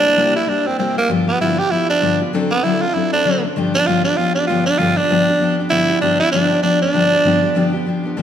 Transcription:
Already playing: D4
0.04 A#3 E4 G4
0.16 C3 G3 A#3 E4 G4
0.35 A#3 E4 G4
0.47 G3 A#3 D4 E4 G4
0.65 A#3 C4 E4 G4
0.78 C3 G3 A#3 C4 E4 G4
0.96 A#3 E4 G4
1.09 G2 D3 F3 B3 F4 G4
1.27 F3 B3 F4 G4
1.40 G2 D3 F3 B3 E4 F4 G4
1.59 F3 B3 F4 G4
1.70 F3 B3 E4 F4 G4
1.89 F3 B3 D4 F4 G4
2.01 G2 D3 F3 B3 F4 G4
2.20 F3 B3 F4 G4
2.33 D3 F#3 C4 D4 A4
2.51 B3 C4 D4 A4
2.64 D3 F#3 C4 D4 E4 A4
2.82 C4 D4 F4 A4
2.94 F#3 C4 D4 E4 A4
3.12 C4 D4 A4
3.25 D3 F#3 C4 D4 A4
3.44 C4 D4 A4
3.56 G2 D3 F3 B3 D4 G4
3.74 F3 B3 D4 G4
3.87 G2 D3 F3 B3 D4 F4 G4
4.04 F3 B3 D4 G4
4.16 F3 B3 D4 F4 G4
4.35 F3 B3 D4 G4
4.48 G2 D3 F3 B3 D4 F4 G4
4.66 F3 B3 D4 G4
4.78 G2 D3 F3 B3 D4 F4 G4
4.97 F3 B3 D4 G4
5.10 G2 D3 F3 B3 D4 G4
5.28 F3 B3 D4 G4
5.40 F3 B3 D4 G4
5.59 F3 B3 D4 G4
5.70 G2 D3 F3 B3 D4 E4 G4
5.89 F3 B3 D4 G4
6.01 G2 D3 F3 B3 D4 G4
6.20 F3 B3 D4 E4 G4
6.32 G2 D3 F3 B3 D4 G4
6.50 F3 B3 D4 G4
6.63 F3 B3 D4 G4
6.81 F3 B3 D4 G4
6.94 G2 D3 F3 B3 D4 G4
7.12 F3 B3 D4 G4
7.24 G2 D3 F3 B3 D4 G4
7.43 F3 B3 D4 G4
7.55 G2 D3 F3 B3 D4 G4
7.73 F3 B3 D4 G4
7.85 F3 B3 D4 G4
8.03 F3 B3 D4 G4
8.17 G2 D3 F3 B3 D4 G4

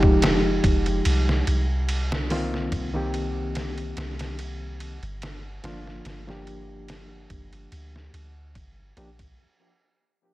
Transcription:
Already playing: F1 F3 G#3 D#4 G4
0.03 kick
0.22 snare, ride
0.64 F1, kick, ride
0.86 ride
1.05 C2, ride
1.29 snare
1.47 C2, ride
1.89 ride
2.12 snare
2.30 D#3 A#3 C4 F4, snare, open hi-hat
2.54 snare
2.72 C2, kick, ride
2.94 D#3 A#3 C4 G4
3.14 ride
3.55 snare, ride
3.78 ride
3.97 C2, snare, ride
4.19 snare, ride
4.39 ride
4.80 ride
5.03 G1, ride
5.22 snare, ride
5.63 G1 F3 A#3 D4 F4, snare, ride
5.87 snare
6.05 G1, snare, ride
6.27 F3 A#3 D4 G4, snare
6.47 ride
6.88 snare, ride
7.30 G1, kick, ride
7.53 ride
7.72 D2, ride
7.96 snare
8.13 D2, ride
8.55 G1, kick, ride
8.97 A#1 F3 A#3 D4 G4, ride
9.19 kick, ride

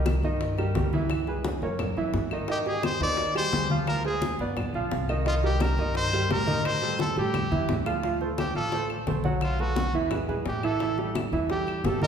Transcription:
Already playing: C2 G3 G4 A#4
0.06 high bongo, high conga, claves
0.22 G2 D#3 D#4 D#5, high bongo, high conga
0.41 high bongo, high conga
0.58 G3 G4 A#4, high bongo, high conga, claves
0.75 C#2 G3 G4 A#4, high bongo, low bongo, high conga
0.93 E3 E4 E5, high conga
1.10 high bongo, high conga, claves
1.27 G#3 G#4 B4, high bongo, high conga
1.45 high bongo, high conga
1.62 F#2 A#3 A#4 C#5, high bongo, high conga
1.79 high bongo, high conga, low conga, claves
1.97 F#2 E3 E4 E5, high conga
2.14 G#2, high bongo, low bongo, high conga
2.31 D#3 D#4 D#5, high bongo, high conga, claves
2.48 D#3 D#4 G4 D#5, high bongo, high conga
2.66 G#3 G4 G#4, high bongo, high conga
2.83 C5, high bongo, high conga, claves
3.00 D#2 D#3 D#4 C5 D5, high bongo, high conga
3.17 high bongo, high conga
3.35 G3 G4 G#4 C5, high bongo, high conga, claves
3.53 D2 G3 G4 G#4, high bongo, low bongo, high conga
3.70 F3 F4 F5, high conga
3.87 A#4, high bongo, high conga, claves
4.05 G#3 G#4 C5, high bongo, high conga
4.22 high bongo, high conga
4.39 G1 B3 B4 D5, high bongo, high conga
4.57 high bongo, high conga, low conga, claves
4.74 B1 F3 F4 F5, high conga
4.91 C2, high bongo, low bongo, high conga
5.08 D#3 D#4 D#5, high bongo, high conga, claves
5.26 D#3 D#4 F4 D#5, high bongo, high conga
5.43 G3 G4 A#4, high bongo, high conga
5.60 A#4, high bongo, high conga, claves
5.78 G2 D#3 D#4 D#5, high bongo, high conga
5.95 C5, high bongo, high conga
6.13 G3 G4 A#4, high bongo, high conga, claves
6.30 A2 G3 G4 A#4, high bongo, low bongo, high conga
6.47 D#3 D#4 D#5, high conga
6.65 C5, high bongo, high conga, claves
6.82 G3 G4 A4, high bongo, high conga
6.99 A4, high bongo, high conga
7.17 A2 G3 G4 A4, high bongo, high conga
7.34 high bongo, high conga, claves
7.51 E2 E3 E4 E5, high conga
7.69 D2, high bongo, low bongo, low conga
7.86 F3 F4 F5, high bongo, low conga, claves
8.03 F3 F4 F5, high bongo, high conga
8.21 A3 A4 C5, high bongo, high conga
8.38 G4, high bongo, high conga, claves
8.55 A1 F3 F4 A4 F5, high bongo, high conga
8.72 A3 A4 C5, high bongo, high conga
8.90 high bongo, high conga, claves
9.07 B1 A3 A4 C5, high bongo, low bongo, high conga
9.24 F#3 F#4 F#5, high conga
9.41 F4, high bongo, high conga, claves
9.59 A3 F#4 A4 B4, high bongo, high conga
9.76 high bongo, high conga
9.93 E2 E3 E4 E5, high bongo, high conga
10.11 G#3 G#4 B4, high bongo, high conga, low conga, claves
10.28 B1 G#3 G#4 B4, high conga, low conga
10.45 A1 G4, high bongo, low bongo, high conga
10.63 E3 E4 A4 E5, high bongo, high conga, claves
10.80 E3 E4 E5, high bongo, high conga
10.98 G3 G4 A4, high bongo, high conga
11.15 high bongo, high conga, claves
11.32 E2 E3 E4 E5, high bongo, high conga
11.50 G3 G4 A4, high bongo, high conga
11.67 high bongo, high conga, claves
11.84 G#1 G3 G4 A4, high bongo, low bongo, high conga
12.02 D#3 D#4 A#4 D#5, high conga

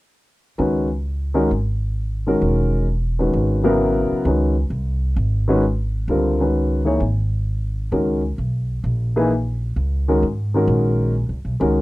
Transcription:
0.58 C#2 D#3 G#3 C#4 F#4 B4
1.34 D#3 G#3 C#4 F#4 A#4
1.51 G#1
2.27 D#3 G#3 C#4 F#4 A#4
2.42 E1
3.19 D#3 G#3 C#4 F#4 B4
3.33 G#1
3.63 C#3 F#3 B3 E4 A#4
4.11 muted upright bass stroke
4.25 C#2 D#3 G#3 C#4 F#4 B4
4.70 C2
5.16 G#1
5.48 D#3 G#3 C#4 F#4 B4
6.08 C#2 D3 G3 C4 F4 A#4
6.40 D#3 G#3 C#4 F#4 B4
6.85 E3 A#3 D#4 G#4 C#5
7.00 G#1
7.92 C#2 D#3 G#3 C#4 F#4 A#4
8.38 B1
8.84 A#1
9.16 E3 A#3 D#4 G#4 B4
9.76 C#2
10.08 D#3 G#3 C#4 F#4 A#4
10.22 G#2
10.54 D#3 G#3 C#4 F#4 A#4
10.67 A#1
11.29 C#2
11.45 B1
11.60 C#2 D#3 G#3 C#4 F#4 A#4

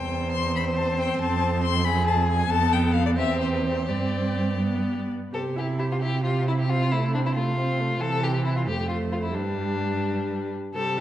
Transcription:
Already playing: E2 C4 C5 G5
0.32 C6
0.56 B5
0.76 A5
0.99 G5
1.21 F2 A5
1.64 C6
1.85 G#4 B5
2.07 A5
2.29 G#5
2.50 F2 B3 A4 A5
2.73 G5
2.94 F5
3.06 D5
3.15 E2 C4 G4 E5
3.41 C5
3.54 B4
3.66 C5
3.88 G2 C4 G4 D5
4.61 B3
5.33 C3 G4 A4 C5
5.56 E4 G4 E5
5.79 E4 G4 C5
5.92 F4
6.02 E4 G4 E5
6.24 F4 G4 C5
6.47 E4 E5
6.59 G4
6.70 C4 F4 C5
6.92 A3 E4 A4
7.14 C4 D4 C5
7.26 E4
7.35 A3 F4 A4
7.57 C4 C5
7.80 A3 A4
8.01 C3 E3 A4 C5
8.24 G4
8.45 E4
8.56 F4
8.67 F2 A3 G4 C5
8.88 F4
9.12 F4
9.23 E4
9.35 G2 G3 D4 B4
10.75 C3 G3 A4 C5

